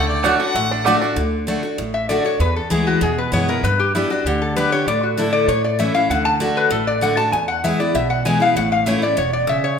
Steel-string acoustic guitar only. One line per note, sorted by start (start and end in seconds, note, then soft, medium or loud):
0.00 0.23 D3 medium
0.24 0.39 D3 medium
0.24 0.39 A3 medium
0.24 0.39 D4 medium
0.24 0.38 F#4 medium
0.39 0.55 D4 soft
0.39 0.54 F#4 medium
0.56 1.14 A2 medium
0.86 1.01 D3 medium
0.86 1.01 A3 medium
0.86 1.01 D4 medium
0.86 1.01 F#4 loud
1.02 1.17 D4 soft
1.02 1.16 F#4 medium
1.16 1.46 D3 medium
1.47 1.62 D3 medium
1.47 1.63 A3 medium
1.47 1.63 D4 medium
1.47 1.62 F#4 medium
1.63 1.78 D4 soft
1.63 1.77 F#4 medium
1.78 2.37 A2 medium
2.09 2.24 D3 medium
2.09 2.24 A3 medium
2.09 2.25 D4 loud
2.09 2.23 F#4 medium
2.25 2.40 D4 medium
2.25 2.39 F#4 medium
2.40 2.99 E2 medium
2.70 3.00 E3 medium
2.70 3.00 G#3 medium
2.70 3.00 B3 medium
2.70 3.01 E4 medium
3.01 3.60 B2 medium
3.32 3.47 E3 medium
3.32 3.48 G#3 medium
3.32 3.48 B3 loud
3.32 3.47 E4 medium
3.48 3.64 B3 medium
3.48 3.63 E4 medium
3.65 4.22 G2 medium
3.95 4.09 G3 medium
3.95 4.10 B3 medium
3.95 4.10 D4 medium
3.95 4.09 G4 medium
4.10 4.25 D4 medium
4.10 4.24 G4 medium
4.27 4.84 D3 medium
4.56 4.71 G3 medium
4.56 4.71 B3 medium
4.56 4.72 D4 medium
4.56 4.71 G4 loud
4.72 4.87 D4 soft
4.72 4.86 G4 medium
4.88 5.46 A2 medium
5.17 5.47 D3 medium
5.17 5.47 A3 medium
5.17 5.47 D4 medium
5.17 5.47 E4 medium
5.49 6.07 A2 medium
5.79 5.94 E3 medium
5.79 5.94 A3 medium
5.79 5.94 C#4 medium
5.79 5.93 E4 medium
5.95 6.10 C#4 soft
5.95 6.09 E4 medium
6.11 6.39 D3 medium
6.40 6.70 D3 medium
6.40 6.70 A3 medium
6.40 6.70 D4 medium
6.40 6.70 F#4 medium
6.70 7.29 A2 medium
7.01 7.17 D3 medium
7.01 7.17 A3 medium
7.01 7.18 D4 medium
7.01 7.17 F#4 medium
7.18 7.33 D4 soft
7.18 7.32 F#4 medium
7.33 7.92 E2 medium
7.64 7.79 E3 medium
7.64 7.79 G#3 medium
7.64 7.79 B3 medium
7.64 7.79 E4 medium
7.80 7.95 B3 medium
7.80 7.94 E4 medium
7.95 8.53 B2 medium
8.25 8.40 E3 medium
8.25 8.41 G#3 medium
8.25 8.41 B3 medium
8.25 8.39 E4 medium
8.40 8.56 B3 medium
8.40 8.55 E4 medium
8.57 9.15 A2 medium
8.86 9.02 E3 medium
8.86 9.02 A3 loud
8.86 9.02 C#4 medium
8.86 9.01 E4 medium
9.02 9.18 C#4 medium
9.02 9.17 E4 medium
9.17 9.47 B2 medium
9.47 9.77 C#3 medium